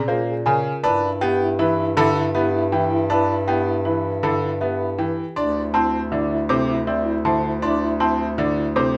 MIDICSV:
0, 0, Header, 1, 7, 480
1, 0, Start_track
1, 0, Tempo, 377358
1, 1063, Time_signature, 6, 2, 24, 8
1, 11410, End_track
2, 0, Start_track
2, 0, Title_t, "Celesta"
2, 0, Program_c, 0, 8
2, 102, Note_on_c, 0, 77, 84
2, 415, Note_off_c, 0, 77, 0
2, 582, Note_on_c, 0, 80, 89
2, 895, Note_off_c, 0, 80, 0
2, 1062, Note_on_c, 0, 81, 87
2, 1375, Note_off_c, 0, 81, 0
2, 1542, Note_on_c, 0, 79, 116
2, 1855, Note_off_c, 0, 79, 0
2, 2023, Note_on_c, 0, 76, 90
2, 2335, Note_off_c, 0, 76, 0
2, 2503, Note_on_c, 0, 83, 84
2, 2815, Note_off_c, 0, 83, 0
2, 2985, Note_on_c, 0, 76, 86
2, 3296, Note_off_c, 0, 76, 0
2, 3465, Note_on_c, 0, 79, 74
2, 3776, Note_off_c, 0, 79, 0
2, 3942, Note_on_c, 0, 81, 78
2, 4255, Note_off_c, 0, 81, 0
2, 4421, Note_on_c, 0, 79, 93
2, 4734, Note_off_c, 0, 79, 0
2, 4903, Note_on_c, 0, 76, 62
2, 5215, Note_off_c, 0, 76, 0
2, 5382, Note_on_c, 0, 83, 69
2, 5695, Note_off_c, 0, 83, 0
2, 5861, Note_on_c, 0, 76, 76
2, 6174, Note_off_c, 0, 76, 0
2, 6342, Note_on_c, 0, 79, 72
2, 6655, Note_off_c, 0, 79, 0
2, 6822, Note_on_c, 0, 84, 68
2, 7135, Note_off_c, 0, 84, 0
2, 7298, Note_on_c, 0, 81, 97
2, 7613, Note_off_c, 0, 81, 0
2, 7780, Note_on_c, 0, 76, 67
2, 8094, Note_off_c, 0, 76, 0
2, 8258, Note_on_c, 0, 86, 80
2, 8573, Note_off_c, 0, 86, 0
2, 8740, Note_on_c, 0, 76, 85
2, 9054, Note_off_c, 0, 76, 0
2, 9224, Note_on_c, 0, 81, 84
2, 9535, Note_off_c, 0, 81, 0
2, 9703, Note_on_c, 0, 84, 80
2, 10015, Note_off_c, 0, 84, 0
2, 10181, Note_on_c, 0, 81, 95
2, 10494, Note_off_c, 0, 81, 0
2, 10662, Note_on_c, 0, 76, 66
2, 10975, Note_off_c, 0, 76, 0
2, 11141, Note_on_c, 0, 86, 75
2, 11410, Note_off_c, 0, 86, 0
2, 11410, End_track
3, 0, Start_track
3, 0, Title_t, "Grand piano"
3, 0, Program_c, 1, 0
3, 101, Note_on_c, 1, 72, 81
3, 414, Note_off_c, 1, 72, 0
3, 586, Note_on_c, 1, 80, 73
3, 896, Note_off_c, 1, 80, 0
3, 1062, Note_on_c, 1, 71, 103
3, 1375, Note_off_c, 1, 71, 0
3, 1545, Note_on_c, 1, 79, 90
3, 1856, Note_off_c, 1, 79, 0
3, 2020, Note_on_c, 1, 71, 85
3, 2334, Note_off_c, 1, 71, 0
3, 2502, Note_on_c, 1, 69, 115
3, 2815, Note_off_c, 1, 69, 0
3, 2980, Note_on_c, 1, 71, 78
3, 3294, Note_off_c, 1, 71, 0
3, 3462, Note_on_c, 1, 79, 75
3, 3775, Note_off_c, 1, 79, 0
3, 3944, Note_on_c, 1, 71, 87
3, 4255, Note_off_c, 1, 71, 0
3, 4424, Note_on_c, 1, 79, 74
3, 4735, Note_off_c, 1, 79, 0
3, 4898, Note_on_c, 1, 71, 69
3, 5213, Note_off_c, 1, 71, 0
3, 5385, Note_on_c, 1, 69, 94
3, 5696, Note_off_c, 1, 69, 0
3, 5867, Note_on_c, 1, 71, 62
3, 6177, Note_off_c, 1, 71, 0
3, 6343, Note_on_c, 1, 79, 64
3, 6655, Note_off_c, 1, 79, 0
3, 6824, Note_on_c, 1, 74, 96
3, 7135, Note_off_c, 1, 74, 0
3, 7306, Note_on_c, 1, 84, 72
3, 7616, Note_off_c, 1, 84, 0
3, 7788, Note_on_c, 1, 74, 67
3, 8097, Note_off_c, 1, 74, 0
3, 8266, Note_on_c, 1, 72, 100
3, 8576, Note_off_c, 1, 72, 0
3, 8742, Note_on_c, 1, 74, 67
3, 9055, Note_off_c, 1, 74, 0
3, 9222, Note_on_c, 1, 84, 72
3, 9535, Note_off_c, 1, 84, 0
3, 9705, Note_on_c, 1, 74, 92
3, 10016, Note_off_c, 1, 74, 0
3, 10183, Note_on_c, 1, 84, 75
3, 10495, Note_off_c, 1, 84, 0
3, 10661, Note_on_c, 1, 74, 78
3, 10974, Note_off_c, 1, 74, 0
3, 11146, Note_on_c, 1, 72, 105
3, 11410, Note_off_c, 1, 72, 0
3, 11410, End_track
4, 0, Start_track
4, 0, Title_t, "Marimba"
4, 0, Program_c, 2, 12
4, 101, Note_on_c, 2, 65, 84
4, 414, Note_off_c, 2, 65, 0
4, 583, Note_on_c, 2, 70, 82
4, 895, Note_off_c, 2, 70, 0
4, 1067, Note_on_c, 2, 64, 92
4, 1377, Note_off_c, 2, 64, 0
4, 1546, Note_on_c, 2, 67, 110
4, 1856, Note_off_c, 2, 67, 0
4, 2028, Note_on_c, 2, 64, 94
4, 2337, Note_off_c, 2, 64, 0
4, 2505, Note_on_c, 2, 69, 80
4, 2816, Note_off_c, 2, 69, 0
4, 2985, Note_on_c, 2, 67, 84
4, 3296, Note_off_c, 2, 67, 0
4, 3465, Note_on_c, 2, 71, 66
4, 3776, Note_off_c, 2, 71, 0
4, 3946, Note_on_c, 2, 64, 76
4, 4256, Note_off_c, 2, 64, 0
4, 4422, Note_on_c, 2, 67, 80
4, 4735, Note_off_c, 2, 67, 0
4, 4900, Note_on_c, 2, 64, 78
4, 5214, Note_off_c, 2, 64, 0
4, 5384, Note_on_c, 2, 69, 62
4, 5696, Note_off_c, 2, 69, 0
4, 5865, Note_on_c, 2, 67, 66
4, 6176, Note_off_c, 2, 67, 0
4, 6344, Note_on_c, 2, 71, 62
4, 6655, Note_off_c, 2, 71, 0
4, 6824, Note_on_c, 2, 62, 72
4, 7135, Note_off_c, 2, 62, 0
4, 7302, Note_on_c, 2, 64, 93
4, 7615, Note_off_c, 2, 64, 0
4, 7785, Note_on_c, 2, 62, 79
4, 8096, Note_off_c, 2, 62, 0
4, 8261, Note_on_c, 2, 69, 76
4, 8574, Note_off_c, 2, 69, 0
4, 8742, Note_on_c, 2, 64, 87
4, 9055, Note_off_c, 2, 64, 0
4, 9222, Note_on_c, 2, 72, 62
4, 9535, Note_off_c, 2, 72, 0
4, 9700, Note_on_c, 2, 62, 77
4, 10014, Note_off_c, 2, 62, 0
4, 10183, Note_on_c, 2, 64, 97
4, 10495, Note_off_c, 2, 64, 0
4, 10662, Note_on_c, 2, 62, 76
4, 10974, Note_off_c, 2, 62, 0
4, 11141, Note_on_c, 2, 69, 70
4, 11410, Note_off_c, 2, 69, 0
4, 11410, End_track
5, 0, Start_track
5, 0, Title_t, "French horn"
5, 0, Program_c, 3, 60
5, 103, Note_on_c, 3, 68, 57
5, 271, Note_off_c, 3, 68, 0
5, 342, Note_on_c, 3, 68, 50
5, 511, Note_off_c, 3, 68, 0
5, 583, Note_on_c, 3, 68, 46
5, 751, Note_off_c, 3, 68, 0
5, 1065, Note_on_c, 3, 64, 41
5, 1233, Note_off_c, 3, 64, 0
5, 1302, Note_on_c, 3, 64, 47
5, 1470, Note_off_c, 3, 64, 0
5, 1547, Note_on_c, 3, 64, 58
5, 1714, Note_off_c, 3, 64, 0
5, 1788, Note_on_c, 3, 64, 69
5, 1955, Note_off_c, 3, 64, 0
5, 2024, Note_on_c, 3, 64, 71
5, 2192, Note_off_c, 3, 64, 0
5, 2268, Note_on_c, 3, 64, 81
5, 2434, Note_off_c, 3, 64, 0
5, 2511, Note_on_c, 3, 64, 88
5, 2677, Note_off_c, 3, 64, 0
5, 2754, Note_on_c, 3, 64, 80
5, 2918, Note_off_c, 3, 64, 0
5, 2988, Note_on_c, 3, 64, 89
5, 3154, Note_off_c, 3, 64, 0
5, 3226, Note_on_c, 3, 64, 82
5, 3393, Note_off_c, 3, 64, 0
5, 3467, Note_on_c, 3, 64, 83
5, 3634, Note_off_c, 3, 64, 0
5, 3706, Note_on_c, 3, 64, 83
5, 3873, Note_off_c, 3, 64, 0
5, 3944, Note_on_c, 3, 64, 77
5, 4112, Note_off_c, 3, 64, 0
5, 4194, Note_on_c, 3, 64, 68
5, 4358, Note_off_c, 3, 64, 0
5, 4427, Note_on_c, 3, 64, 76
5, 4594, Note_off_c, 3, 64, 0
5, 4663, Note_on_c, 3, 64, 65
5, 4831, Note_off_c, 3, 64, 0
5, 4906, Note_on_c, 3, 64, 64
5, 5073, Note_off_c, 3, 64, 0
5, 5141, Note_on_c, 3, 64, 62
5, 5310, Note_off_c, 3, 64, 0
5, 5386, Note_on_c, 3, 64, 61
5, 5553, Note_off_c, 3, 64, 0
5, 5626, Note_on_c, 3, 64, 51
5, 5793, Note_off_c, 3, 64, 0
5, 5863, Note_on_c, 3, 64, 44
5, 6031, Note_off_c, 3, 64, 0
5, 6104, Note_on_c, 3, 64, 39
5, 6272, Note_off_c, 3, 64, 0
5, 6346, Note_on_c, 3, 64, 31
5, 6513, Note_off_c, 3, 64, 0
5, 6824, Note_on_c, 3, 64, 37
5, 6992, Note_off_c, 3, 64, 0
5, 7063, Note_on_c, 3, 64, 40
5, 7231, Note_off_c, 3, 64, 0
5, 7306, Note_on_c, 3, 64, 51
5, 7473, Note_off_c, 3, 64, 0
5, 7544, Note_on_c, 3, 64, 48
5, 7712, Note_off_c, 3, 64, 0
5, 7776, Note_on_c, 3, 64, 65
5, 7947, Note_off_c, 3, 64, 0
5, 8019, Note_on_c, 3, 64, 70
5, 8189, Note_off_c, 3, 64, 0
5, 8261, Note_on_c, 3, 64, 73
5, 8430, Note_off_c, 3, 64, 0
5, 8503, Note_on_c, 3, 64, 84
5, 8671, Note_off_c, 3, 64, 0
5, 8741, Note_on_c, 3, 64, 72
5, 8909, Note_off_c, 3, 64, 0
5, 8982, Note_on_c, 3, 64, 80
5, 9150, Note_off_c, 3, 64, 0
5, 9220, Note_on_c, 3, 64, 78
5, 9389, Note_off_c, 3, 64, 0
5, 9460, Note_on_c, 3, 64, 72
5, 9629, Note_off_c, 3, 64, 0
5, 9704, Note_on_c, 3, 64, 84
5, 9872, Note_off_c, 3, 64, 0
5, 9947, Note_on_c, 3, 64, 77
5, 10113, Note_off_c, 3, 64, 0
5, 10188, Note_on_c, 3, 64, 80
5, 10354, Note_off_c, 3, 64, 0
5, 10423, Note_on_c, 3, 64, 65
5, 10591, Note_off_c, 3, 64, 0
5, 10662, Note_on_c, 3, 64, 73
5, 10831, Note_off_c, 3, 64, 0
5, 10899, Note_on_c, 3, 64, 70
5, 11069, Note_off_c, 3, 64, 0
5, 11143, Note_on_c, 3, 64, 64
5, 11311, Note_off_c, 3, 64, 0
5, 11410, End_track
6, 0, Start_track
6, 0, Title_t, "Grand piano"
6, 0, Program_c, 4, 0
6, 108, Note_on_c, 4, 58, 73
6, 417, Note_off_c, 4, 58, 0
6, 589, Note_on_c, 4, 49, 88
6, 897, Note_off_c, 4, 49, 0
6, 1063, Note_on_c, 4, 62, 107
6, 1375, Note_off_c, 4, 62, 0
6, 1545, Note_on_c, 4, 59, 91
6, 1856, Note_off_c, 4, 59, 0
6, 2023, Note_on_c, 4, 52, 90
6, 2335, Note_off_c, 4, 52, 0
6, 2506, Note_on_c, 4, 50, 110
6, 2816, Note_off_c, 4, 50, 0
6, 2986, Note_on_c, 4, 59, 77
6, 3296, Note_off_c, 4, 59, 0
6, 3463, Note_on_c, 4, 52, 85
6, 3775, Note_off_c, 4, 52, 0
6, 3940, Note_on_c, 4, 62, 99
6, 4254, Note_off_c, 4, 62, 0
6, 4424, Note_on_c, 4, 59, 82
6, 4735, Note_off_c, 4, 59, 0
6, 4907, Note_on_c, 4, 52, 61
6, 5216, Note_off_c, 4, 52, 0
6, 5381, Note_on_c, 4, 50, 86
6, 5694, Note_off_c, 4, 50, 0
6, 5867, Note_on_c, 4, 59, 64
6, 6176, Note_off_c, 4, 59, 0
6, 6341, Note_on_c, 4, 52, 80
6, 6654, Note_off_c, 4, 52, 0
6, 6822, Note_on_c, 4, 62, 95
6, 7135, Note_off_c, 4, 62, 0
6, 7302, Note_on_c, 4, 60, 81
6, 7615, Note_off_c, 4, 60, 0
6, 7781, Note_on_c, 4, 50, 67
6, 8094, Note_off_c, 4, 50, 0
6, 8259, Note_on_c, 4, 48, 97
6, 8574, Note_off_c, 4, 48, 0
6, 8741, Note_on_c, 4, 60, 60
6, 9054, Note_off_c, 4, 60, 0
6, 9221, Note_on_c, 4, 50, 73
6, 9534, Note_off_c, 4, 50, 0
6, 9697, Note_on_c, 4, 62, 101
6, 10013, Note_off_c, 4, 62, 0
6, 10178, Note_on_c, 4, 60, 77
6, 10493, Note_off_c, 4, 60, 0
6, 10661, Note_on_c, 4, 50, 80
6, 10974, Note_off_c, 4, 50, 0
6, 11143, Note_on_c, 4, 48, 88
6, 11410, Note_off_c, 4, 48, 0
6, 11410, End_track
7, 0, Start_track
7, 0, Title_t, "Bass clarinet"
7, 0, Program_c, 5, 71
7, 0, Note_on_c, 5, 46, 71
7, 917, Note_off_c, 5, 46, 0
7, 1067, Note_on_c, 5, 43, 92
7, 6678, Note_off_c, 5, 43, 0
7, 6825, Note_on_c, 5, 38, 82
7, 11410, Note_off_c, 5, 38, 0
7, 11410, End_track
0, 0, End_of_file